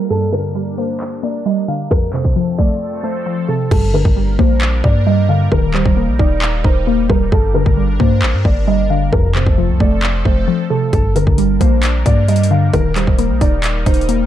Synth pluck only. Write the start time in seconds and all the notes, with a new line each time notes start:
Already playing: G3 A#3 D#4
0.10 G2
0.33 D3
0.55 G3
0.78 A#3
1.23 A#3
1.46 G3
1.68 D3
1.91 F2
2.13 C3
2.36 F3
2.59 A3
3.04 A3
3.26 F3
3.49 C3
3.71 G2
3.94 D3
4.16 G3
4.39 A#3
4.84 A#3
5.07 G3
5.29 D3
5.52 D#3
5.74 G3
5.97 A#3
6.19 D#4
6.65 D#4
6.87 A#3
7.10 G3
7.32 G2
7.55 D3
7.77 G3
8.00 A#3
8.45 A#3
8.67 G3
8.90 D3
9.13 F2
9.35 C3
9.58 F3
9.80 A3
10.25 A3
10.48 F3
10.71 C3
10.93 G2
11.16 D3
11.38 G3
11.61 A#3
12.06 A#3
12.28 G3
12.51 D3
12.74 D#3
12.96 G3
13.19 A#3
13.41 D#4
13.86 D#4
14.09 A#3